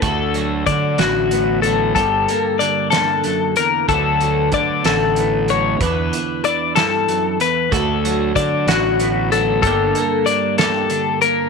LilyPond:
<<
  \new Staff \with { instrumentName = "Clean electric guitar" } { \time 6/8 \key d \major \tempo 4. = 63 a'4 d''8 fis'4 a'8 | a'4 d''8 a'4 bes'8 | a'4 d''8 a'4 cis''8 | b'4 d''8 a'4 b'8 |
a'4 d''8 fis'4 a'8 | a'4 d''8 a'4 bes'8 | }
  \new Staff \with { instrumentName = "Clean electric guitar" } { \clef bass \time 6/8 \key d \major << { fis'8 fis4 fis'8 b8 fis8 | g'8 bes2~ bes8 | <d fis b fis'>8 fis4 fis'8 b8 fis8 | d'2. |
fis'8 fis4 fis'8 b8 fis8 | <d bes d' g'>8 bes4 g'8 d'8 bes8 | } \\ { d,4 d4 a,4 | g,4 d8 g,8 fis,8 e,8 | d,4 d4 a,4 | e,4 e8 g,8 fis,8 e,8 |
d,4 d4 a,4 | g,4 d4 d4 | } >> }
  \new Staff \with { instrumentName = "Fingered electric bass" } { \clef bass \time 6/8 \key d \major d,4 d8 a,,4. | g,,8 r2 r8 | d,4 d8 a,,4. | e,8 r2 r8 |
d,4 d8 a,,4. | g,,8 r2 r8 | }
  \new DrumStaff \with { instrumentName = "Drums" } \drummode { \time 6/8 <hh bd>8 hh8 <hh bd>8 <hh sn>8 hh8 hh8 | <hh bd>8 hh8 hh8 <hh sn>8 hh8 hh8 | <hh bd>8 hh8 <hh bd>8 <hh sn>8 hh8 hh8 | <hh bd>8 hh8 hh8 <hh sn>8 hh8 hh8 |
<hh bd>8 hh8 <hh bd>8 <hh sn>8 hh8 hh8 | <hh bd>8 hh8 hh8 <hh sn>8 hh8 hh8 | }
>>